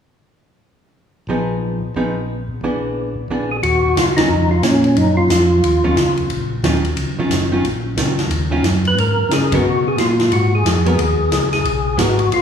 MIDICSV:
0, 0, Header, 1, 5, 480
1, 0, Start_track
1, 0, Key_signature, -6, "minor"
1, 0, Tempo, 334448
1, 1351, Time_signature, 4, 2, 24, 8
1, 17822, End_track
2, 0, Start_track
2, 0, Title_t, "Tonewheel organ"
2, 0, Program_c, 0, 16
2, 5044, Note_on_c, 0, 68, 76
2, 5121, Note_off_c, 0, 68, 0
2, 5210, Note_on_c, 0, 66, 100
2, 5702, Note_off_c, 0, 66, 0
2, 5702, Note_on_c, 0, 65, 83
2, 5832, Note_off_c, 0, 65, 0
2, 5980, Note_on_c, 0, 63, 90
2, 6473, Note_on_c, 0, 65, 83
2, 6476, Note_off_c, 0, 63, 0
2, 6638, Note_off_c, 0, 65, 0
2, 6651, Note_on_c, 0, 61, 69
2, 7132, Note_on_c, 0, 63, 86
2, 7142, Note_off_c, 0, 61, 0
2, 7405, Note_off_c, 0, 63, 0
2, 7422, Note_on_c, 0, 65, 72
2, 8804, Note_off_c, 0, 65, 0
2, 12738, Note_on_c, 0, 71, 81
2, 12904, Note_off_c, 0, 71, 0
2, 12916, Note_on_c, 0, 70, 90
2, 13390, Note_off_c, 0, 70, 0
2, 13396, Note_on_c, 0, 68, 76
2, 13681, Note_off_c, 0, 68, 0
2, 13705, Note_on_c, 0, 66, 87
2, 14172, Note_off_c, 0, 66, 0
2, 14179, Note_on_c, 0, 68, 70
2, 14343, Note_off_c, 0, 68, 0
2, 14344, Note_on_c, 0, 65, 70
2, 14823, Note_off_c, 0, 65, 0
2, 14826, Note_on_c, 0, 66, 89
2, 15115, Note_off_c, 0, 66, 0
2, 15140, Note_on_c, 0, 68, 84
2, 16495, Note_off_c, 0, 68, 0
2, 16548, Note_on_c, 0, 68, 83
2, 17208, Note_on_c, 0, 66, 87
2, 17219, Note_off_c, 0, 68, 0
2, 17691, Note_off_c, 0, 66, 0
2, 17708, Note_on_c, 0, 65, 79
2, 17822, Note_off_c, 0, 65, 0
2, 17822, End_track
3, 0, Start_track
3, 0, Title_t, "Hollow-body jazz guitar"
3, 0, Program_c, 1, 26
3, 1847, Note_on_c, 1, 53, 48
3, 1860, Note_on_c, 1, 59, 44
3, 1860, Note_on_c, 1, 63, 44
3, 1864, Note_on_c, 1, 68, 51
3, 2561, Note_off_c, 1, 53, 0
3, 2567, Note_off_c, 1, 63, 0
3, 2568, Note_off_c, 1, 59, 0
3, 2569, Note_off_c, 1, 68, 0
3, 2813, Note_on_c, 1, 53, 43
3, 2821, Note_on_c, 1, 59, 49
3, 2824, Note_on_c, 1, 63, 51
3, 2828, Note_on_c, 1, 68, 46
3, 3074, Note_off_c, 1, 53, 0
3, 3078, Note_off_c, 1, 59, 0
3, 3079, Note_off_c, 1, 63, 0
3, 3081, Note_off_c, 1, 68, 0
3, 3785, Note_on_c, 1, 52, 47
3, 3791, Note_on_c, 1, 59, 53
3, 3791, Note_on_c, 1, 62, 51
3, 3795, Note_on_c, 1, 68, 51
3, 4492, Note_off_c, 1, 52, 0
3, 4495, Note_off_c, 1, 59, 0
3, 4496, Note_off_c, 1, 62, 0
3, 4498, Note_off_c, 1, 68, 0
3, 4743, Note_on_c, 1, 52, 46
3, 4750, Note_on_c, 1, 59, 42
3, 4755, Note_on_c, 1, 68, 45
3, 4758, Note_on_c, 1, 62, 49
3, 5001, Note_off_c, 1, 52, 0
3, 5005, Note_off_c, 1, 59, 0
3, 5007, Note_off_c, 1, 68, 0
3, 5009, Note_off_c, 1, 62, 0
3, 5992, Note_on_c, 1, 51, 70
3, 6001, Note_on_c, 1, 54, 64
3, 6003, Note_on_c, 1, 61, 62
3, 6007, Note_on_c, 1, 65, 72
3, 6151, Note_off_c, 1, 51, 0
3, 6156, Note_off_c, 1, 54, 0
3, 6157, Note_off_c, 1, 61, 0
3, 6159, Note_off_c, 1, 65, 0
3, 8385, Note_on_c, 1, 51, 64
3, 8388, Note_on_c, 1, 54, 59
3, 8391, Note_on_c, 1, 61, 60
3, 8398, Note_on_c, 1, 65, 65
3, 8547, Note_off_c, 1, 51, 0
3, 8549, Note_off_c, 1, 54, 0
3, 8550, Note_off_c, 1, 61, 0
3, 8554, Note_off_c, 1, 65, 0
3, 9532, Note_on_c, 1, 51, 52
3, 9532, Note_on_c, 1, 54, 54
3, 9544, Note_on_c, 1, 61, 55
3, 9544, Note_on_c, 1, 65, 54
3, 9795, Note_off_c, 1, 51, 0
3, 9795, Note_off_c, 1, 54, 0
3, 9801, Note_off_c, 1, 61, 0
3, 9801, Note_off_c, 1, 65, 0
3, 10314, Note_on_c, 1, 51, 56
3, 10326, Note_on_c, 1, 54, 59
3, 10329, Note_on_c, 1, 61, 67
3, 10333, Note_on_c, 1, 65, 58
3, 10756, Note_off_c, 1, 51, 0
3, 10762, Note_off_c, 1, 54, 0
3, 10764, Note_off_c, 1, 61, 0
3, 10766, Note_off_c, 1, 65, 0
3, 10784, Note_on_c, 1, 51, 62
3, 10790, Note_on_c, 1, 54, 62
3, 10795, Note_on_c, 1, 61, 63
3, 10807, Note_on_c, 1, 65, 68
3, 10946, Note_off_c, 1, 51, 0
3, 10948, Note_off_c, 1, 54, 0
3, 10951, Note_off_c, 1, 61, 0
3, 10957, Note_off_c, 1, 65, 0
3, 11445, Note_on_c, 1, 54, 42
3, 11448, Note_on_c, 1, 51, 49
3, 11455, Note_on_c, 1, 61, 43
3, 11456, Note_on_c, 1, 65, 47
3, 11710, Note_off_c, 1, 54, 0
3, 11712, Note_off_c, 1, 51, 0
3, 11715, Note_off_c, 1, 61, 0
3, 11716, Note_off_c, 1, 65, 0
3, 12215, Note_on_c, 1, 51, 54
3, 12222, Note_on_c, 1, 54, 57
3, 12227, Note_on_c, 1, 65, 67
3, 12229, Note_on_c, 1, 61, 70
3, 12380, Note_off_c, 1, 51, 0
3, 12383, Note_off_c, 1, 54, 0
3, 12386, Note_off_c, 1, 65, 0
3, 12387, Note_off_c, 1, 61, 0
3, 13675, Note_on_c, 1, 56, 60
3, 13687, Note_on_c, 1, 59, 63
3, 13691, Note_on_c, 1, 66, 65
3, 13698, Note_on_c, 1, 70, 68
3, 13828, Note_off_c, 1, 56, 0
3, 13834, Note_off_c, 1, 59, 0
3, 13836, Note_off_c, 1, 66, 0
3, 13840, Note_off_c, 1, 70, 0
3, 15586, Note_on_c, 1, 56, 53
3, 15593, Note_on_c, 1, 59, 61
3, 15596, Note_on_c, 1, 66, 67
3, 15604, Note_on_c, 1, 70, 53
3, 15742, Note_off_c, 1, 56, 0
3, 15745, Note_off_c, 1, 59, 0
3, 15747, Note_off_c, 1, 66, 0
3, 15751, Note_off_c, 1, 70, 0
3, 17188, Note_on_c, 1, 56, 51
3, 17196, Note_on_c, 1, 59, 53
3, 17202, Note_on_c, 1, 66, 57
3, 17203, Note_on_c, 1, 70, 59
3, 17455, Note_off_c, 1, 56, 0
3, 17460, Note_off_c, 1, 59, 0
3, 17463, Note_off_c, 1, 66, 0
3, 17463, Note_off_c, 1, 70, 0
3, 17822, End_track
4, 0, Start_track
4, 0, Title_t, "Tonewheel organ"
4, 0, Program_c, 2, 16
4, 1824, Note_on_c, 2, 34, 68
4, 2589, Note_off_c, 2, 34, 0
4, 2792, Note_on_c, 2, 34, 69
4, 3554, Note_off_c, 2, 34, 0
4, 3747, Note_on_c, 2, 34, 62
4, 4512, Note_off_c, 2, 34, 0
4, 4710, Note_on_c, 2, 34, 58
4, 5196, Note_on_c, 2, 39, 80
4, 5474, Note_off_c, 2, 34, 0
4, 5666, Note_off_c, 2, 39, 0
4, 5680, Note_on_c, 2, 37, 70
4, 6148, Note_off_c, 2, 37, 0
4, 6164, Note_on_c, 2, 41, 75
4, 6630, Note_off_c, 2, 41, 0
4, 6638, Note_on_c, 2, 46, 79
4, 7107, Note_off_c, 2, 46, 0
4, 7119, Note_on_c, 2, 42, 82
4, 7586, Note_on_c, 2, 41, 82
4, 7587, Note_off_c, 2, 42, 0
4, 8060, Note_off_c, 2, 41, 0
4, 8077, Note_on_c, 2, 39, 80
4, 8546, Note_off_c, 2, 39, 0
4, 8550, Note_on_c, 2, 37, 81
4, 9022, Note_off_c, 2, 37, 0
4, 9041, Note_on_c, 2, 34, 78
4, 9507, Note_off_c, 2, 34, 0
4, 9510, Note_on_c, 2, 39, 83
4, 9981, Note_off_c, 2, 39, 0
4, 9992, Note_on_c, 2, 37, 70
4, 10273, Note_off_c, 2, 37, 0
4, 10290, Note_on_c, 2, 37, 33
4, 10384, Note_off_c, 2, 37, 0
4, 10466, Note_on_c, 2, 30, 73
4, 10938, Note_off_c, 2, 30, 0
4, 10952, Note_on_c, 2, 34, 81
4, 11421, Note_off_c, 2, 34, 0
4, 11427, Note_on_c, 2, 37, 74
4, 11898, Note_off_c, 2, 37, 0
4, 11904, Note_on_c, 2, 39, 74
4, 12376, Note_off_c, 2, 39, 0
4, 12378, Note_on_c, 2, 42, 75
4, 12853, Note_off_c, 2, 42, 0
4, 12857, Note_on_c, 2, 44, 78
4, 13143, Note_off_c, 2, 44, 0
4, 13165, Note_on_c, 2, 44, 34
4, 13258, Note_off_c, 2, 44, 0
4, 13338, Note_on_c, 2, 49, 73
4, 13812, Note_off_c, 2, 49, 0
4, 13824, Note_on_c, 2, 47, 72
4, 14295, Note_off_c, 2, 47, 0
4, 14301, Note_on_c, 2, 46, 77
4, 14773, Note_off_c, 2, 46, 0
4, 14798, Note_on_c, 2, 44, 83
4, 15261, Note_off_c, 2, 44, 0
4, 15272, Note_on_c, 2, 41, 74
4, 15737, Note_off_c, 2, 41, 0
4, 15758, Note_on_c, 2, 39, 74
4, 16220, Note_off_c, 2, 39, 0
4, 16228, Note_on_c, 2, 37, 80
4, 16694, Note_off_c, 2, 37, 0
4, 16707, Note_on_c, 2, 35, 91
4, 17173, Note_off_c, 2, 35, 0
4, 17183, Note_on_c, 2, 32, 79
4, 17651, Note_off_c, 2, 32, 0
4, 17660, Note_on_c, 2, 34, 74
4, 17822, Note_off_c, 2, 34, 0
4, 17822, End_track
5, 0, Start_track
5, 0, Title_t, "Drums"
5, 5213, Note_on_c, 9, 51, 56
5, 5356, Note_off_c, 9, 51, 0
5, 5697, Note_on_c, 9, 38, 69
5, 5699, Note_on_c, 9, 44, 54
5, 5699, Note_on_c, 9, 51, 70
5, 5840, Note_off_c, 9, 38, 0
5, 5843, Note_off_c, 9, 44, 0
5, 5843, Note_off_c, 9, 51, 0
5, 5991, Note_on_c, 9, 38, 70
5, 5994, Note_on_c, 9, 51, 63
5, 6135, Note_off_c, 9, 38, 0
5, 6137, Note_off_c, 9, 51, 0
5, 6645, Note_on_c, 9, 38, 66
5, 6647, Note_on_c, 9, 44, 56
5, 6647, Note_on_c, 9, 51, 58
5, 6788, Note_off_c, 9, 38, 0
5, 6791, Note_off_c, 9, 44, 0
5, 6791, Note_off_c, 9, 51, 0
5, 6944, Note_on_c, 9, 51, 40
5, 7088, Note_off_c, 9, 51, 0
5, 7125, Note_on_c, 9, 51, 53
5, 7269, Note_off_c, 9, 51, 0
5, 7606, Note_on_c, 9, 38, 66
5, 7609, Note_on_c, 9, 44, 67
5, 7609, Note_on_c, 9, 51, 64
5, 7749, Note_off_c, 9, 38, 0
5, 7752, Note_off_c, 9, 44, 0
5, 7752, Note_off_c, 9, 51, 0
5, 8089, Note_on_c, 9, 51, 59
5, 8233, Note_off_c, 9, 51, 0
5, 8565, Note_on_c, 9, 38, 58
5, 8568, Note_on_c, 9, 44, 45
5, 8568, Note_on_c, 9, 51, 55
5, 8709, Note_off_c, 9, 38, 0
5, 8712, Note_off_c, 9, 44, 0
5, 8712, Note_off_c, 9, 51, 0
5, 8861, Note_on_c, 9, 51, 39
5, 9004, Note_off_c, 9, 51, 0
5, 9039, Note_on_c, 9, 51, 53
5, 9183, Note_off_c, 9, 51, 0
5, 9525, Note_on_c, 9, 38, 65
5, 9528, Note_on_c, 9, 44, 52
5, 9528, Note_on_c, 9, 51, 64
5, 9669, Note_off_c, 9, 38, 0
5, 9672, Note_off_c, 9, 44, 0
5, 9672, Note_off_c, 9, 51, 0
5, 9826, Note_on_c, 9, 51, 46
5, 9969, Note_off_c, 9, 51, 0
5, 9999, Note_on_c, 9, 51, 57
5, 10143, Note_off_c, 9, 51, 0
5, 10485, Note_on_c, 9, 38, 56
5, 10488, Note_on_c, 9, 44, 56
5, 10488, Note_on_c, 9, 51, 60
5, 10628, Note_off_c, 9, 38, 0
5, 10631, Note_off_c, 9, 44, 0
5, 10631, Note_off_c, 9, 51, 0
5, 10974, Note_on_c, 9, 51, 53
5, 11118, Note_off_c, 9, 51, 0
5, 11443, Note_on_c, 9, 38, 59
5, 11446, Note_on_c, 9, 44, 57
5, 11446, Note_on_c, 9, 51, 70
5, 11586, Note_off_c, 9, 38, 0
5, 11589, Note_off_c, 9, 44, 0
5, 11589, Note_off_c, 9, 51, 0
5, 11747, Note_on_c, 9, 38, 49
5, 11750, Note_on_c, 9, 51, 42
5, 11890, Note_off_c, 9, 38, 0
5, 11893, Note_off_c, 9, 51, 0
5, 11921, Note_on_c, 9, 51, 63
5, 12065, Note_off_c, 9, 51, 0
5, 12398, Note_on_c, 9, 38, 56
5, 12401, Note_on_c, 9, 44, 46
5, 12401, Note_on_c, 9, 51, 57
5, 12542, Note_off_c, 9, 38, 0
5, 12545, Note_off_c, 9, 44, 0
5, 12545, Note_off_c, 9, 51, 0
5, 12702, Note_on_c, 9, 51, 35
5, 12846, Note_off_c, 9, 51, 0
5, 12892, Note_on_c, 9, 51, 54
5, 13036, Note_off_c, 9, 51, 0
5, 13363, Note_on_c, 9, 38, 62
5, 13366, Note_on_c, 9, 44, 50
5, 13366, Note_on_c, 9, 51, 68
5, 13507, Note_off_c, 9, 38, 0
5, 13509, Note_off_c, 9, 44, 0
5, 13509, Note_off_c, 9, 51, 0
5, 13661, Note_on_c, 9, 36, 78
5, 13665, Note_on_c, 9, 51, 69
5, 13804, Note_off_c, 9, 36, 0
5, 13808, Note_off_c, 9, 51, 0
5, 14323, Note_on_c, 9, 38, 55
5, 14326, Note_on_c, 9, 44, 48
5, 14326, Note_on_c, 9, 51, 58
5, 14467, Note_off_c, 9, 38, 0
5, 14470, Note_off_c, 9, 44, 0
5, 14470, Note_off_c, 9, 51, 0
5, 14630, Note_on_c, 9, 38, 54
5, 14633, Note_on_c, 9, 51, 44
5, 14774, Note_off_c, 9, 38, 0
5, 14777, Note_off_c, 9, 51, 0
5, 14806, Note_on_c, 9, 51, 55
5, 14950, Note_off_c, 9, 51, 0
5, 15293, Note_on_c, 9, 38, 66
5, 15296, Note_on_c, 9, 44, 52
5, 15296, Note_on_c, 9, 51, 69
5, 15437, Note_off_c, 9, 38, 0
5, 15440, Note_off_c, 9, 44, 0
5, 15440, Note_off_c, 9, 51, 0
5, 15590, Note_on_c, 9, 51, 45
5, 15734, Note_off_c, 9, 51, 0
5, 15769, Note_on_c, 9, 51, 62
5, 15913, Note_off_c, 9, 51, 0
5, 16241, Note_on_c, 9, 38, 61
5, 16244, Note_on_c, 9, 44, 53
5, 16244, Note_on_c, 9, 51, 58
5, 16385, Note_off_c, 9, 38, 0
5, 16387, Note_off_c, 9, 44, 0
5, 16387, Note_off_c, 9, 51, 0
5, 16540, Note_on_c, 9, 38, 36
5, 16543, Note_on_c, 9, 51, 39
5, 16683, Note_off_c, 9, 38, 0
5, 16686, Note_off_c, 9, 51, 0
5, 16724, Note_on_c, 9, 51, 60
5, 16868, Note_off_c, 9, 51, 0
5, 17199, Note_on_c, 9, 38, 69
5, 17202, Note_on_c, 9, 44, 53
5, 17202, Note_on_c, 9, 51, 70
5, 17342, Note_off_c, 9, 38, 0
5, 17345, Note_off_c, 9, 44, 0
5, 17345, Note_off_c, 9, 51, 0
5, 17492, Note_on_c, 9, 51, 40
5, 17635, Note_off_c, 9, 51, 0
5, 17681, Note_on_c, 9, 51, 56
5, 17822, Note_off_c, 9, 51, 0
5, 17822, End_track
0, 0, End_of_file